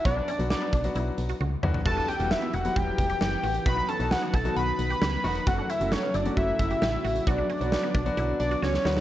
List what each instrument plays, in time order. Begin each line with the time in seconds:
0.05 fm bass B1, grand piano F#3 B3 D4 F#4, synth arpeggio sound F#4, analog synth lead D5, kick, closed hi-hat
0.16 synth arpeggio sound D4
0.28 synth arpeggio sound C#4, closed hi-hat
0.39 fm bass B1, grand piano F#3 B3 D4 F#4, closed hi-hat
0.50 analog synth lead D5, snare
0.62 synth arpeggio sound B3
0.73 fm bass B1, synth arpeggio sound D4, kick, closed hi-hat
0.84 grand piano F#3 B3 D4 F#4, closed hi-hat
0.95 fm bass B1, synth arpeggio sound E4, closed hi-hat
1.18 fm bass B1, closed hi-hat
1.29 synth arpeggio sound F#4, closed hi-hat
1.40 fm bass C#2, synth arpeggio sound F#4, high tom
1.63 fm bass D2, grand piano F#3 B3 D4 F#4, synth arpeggio sound E4, mid tom
1.74 floor tom
1.86 fm bass E1, string machine E3 B3, grand piano G3 B3 E4 F#4, synth arpeggio sound F#4, analog synth lead A5, kick, crash
1.97 synth arpeggio sound D4
2.08 synth arpeggio sound C#4, analog synth lead G5, closed hi-hat
2.19 fm bass E1, grand piano G3 B3 E4 F#4, closed hi-hat
2.31 analog synth lead E5, snare
2.42 synth arpeggio sound B3
2.53 fm bass E1, synth arpeggio sound E4, analog synth lead F#5, closed hi-hat
2.65 grand piano F#3 G3 B3 E4, closed hi-hat
2.76 fm bass E1, synth arpeggio sound F#4, analog synth lead G5, kick, closed hi-hat
2.98 fm bass E1, kick, closed hi-hat
3.10 synth arpeggio sound G4, closed hi-hat
3.21 fm bass F#1, synth arpeggio sound G4, snare
3.44 fm bass A1, synth arpeggio sound F#4, open hi-hat
3.55 closed hi-hat
3.66 fm bass B1, string machine D#3 F#3, grand piano F#3 B3 D#4 F#4, synth arpeggio sound F#4, analog synth lead B5, kick, closed hi-hat
3.77 synth arpeggio sound D#4
3.89 synth arpeggio sound C#4, analog synth lead A5, closed hi-hat
4.00 fm bass B1, grand piano F#3 B3 D#4 F#4, closed hi-hat
4.11 analog synth lead F#5, snare
4.23 synth arpeggio sound B3
4.34 fm bass B1, synth arpeggio sound E4, analog synth lead A5, kick, closed hi-hat
4.45 grand piano F#3 B3 D#4 F#4, closed hi-hat
4.56 fm bass B1, synth arpeggio sound F#4, analog synth lead B5, closed hi-hat
4.79 fm bass B1, closed hi-hat
4.90 synth arpeggio sound G4, closed hi-hat
5.01 fm bass C#2, synth arpeggio sound G4, snare
5.24 fm bass E1, grand piano F#3 B3 D#4 F#4, synth arpeggio sound F#4, open hi-hat
5.35 closed hi-hat
5.46 fm bass F#1, string machine C#3 F#3 A3 F#4, grand piano F#3 A3 C#4 F#4, synth arpeggio sound F#4, analog synth lead F#5, kick, closed hi-hat
5.58 synth arpeggio sound D4
5.69 synth arpeggio sound C#4, analog synth lead E5, closed hi-hat
5.80 fm bass F#1, grand piano F#3 A3 C#4 F#4, closed hi-hat
5.92 analog synth lead C#5, snare
6.03 synth arpeggio sound B3
6.14 fm bass F#1, synth arpeggio sound E4, analog synth lead D5, closed hi-hat
6.25 grand piano F#3 A3 C#4 F#4, closed hi-hat
6.37 fm bass F#1, synth arpeggio sound F#4, analog synth lead E5, kick, closed hi-hat
6.59 fm bass F#1, kick, closed hi-hat
6.70 synth arpeggio sound G4, closed hi-hat
6.82 fm bass A1, synth arpeggio sound G4, snare
7.04 fm bass A1, synth arpeggio sound F#4, open hi-hat
7.16 closed hi-hat
7.27 fm bass B1, string machine D3 B3, grand piano F#3 B3 D4 F#4, synth arpeggio sound F#4, analog synth lead D5, kick, closed hi-hat
7.38 synth arpeggio sound D4
7.50 synth arpeggio sound C#4, closed hi-hat
7.61 fm bass B1, grand piano F#3 B3 D4 F#4, closed hi-hat
7.72 snare
7.83 synth arpeggio sound B3
7.95 fm bass B1, synth arpeggio sound D4, kick, closed hi-hat
8.06 grand piano F#3 B3 D4 F#4, closed hi-hat
8.17 fm bass B1, synth arpeggio sound E4, closed hi-hat
8.40 fm bass B1, analog synth lead D5, closed hi-hat
8.51 synth arpeggio sound F#4, closed hi-hat
8.62 fm bass C#2, synth arpeggio sound F#4, analog synth lead C#5, snare
8.74 snare
8.85 fm bass D2, grand piano F#3 B3 D4 F#4, synth arpeggio sound E4, snare
8.96 snare